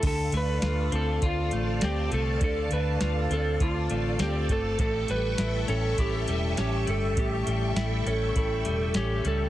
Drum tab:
CC |x-------|--------|--------|--------|
HH |xxxxxxxx|xxxxxxxx|xxxxxxxx|xxxxxxxx|
SD |--o---o-|--o---o-|--o---o-|--o---o-|
BD |o---o---|o---o--o|o---o---|o---o---|